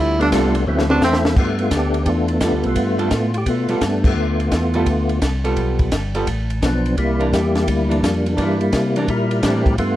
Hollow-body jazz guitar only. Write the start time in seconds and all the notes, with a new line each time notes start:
Already playing: G3 B3 F4 A4
0.33 G3 B3 F4 A4
0.89 D3 C4 F#4 B4
2.43 G3 B3 F4 A4
2.98 G3 B3 F4 A4
3.69 G3 B3 F4 A4
4.75 G3 B3 F4 A4
5.44 G3 B3 F4 A4
6.15 G3 B3 F4 A4
7.19 E3 A#3 D4
7.89 E3 A#3 D4
8.37 E3 A#3 D4
8.96 E3 A#3 D4
9.42 E3 A#3 D4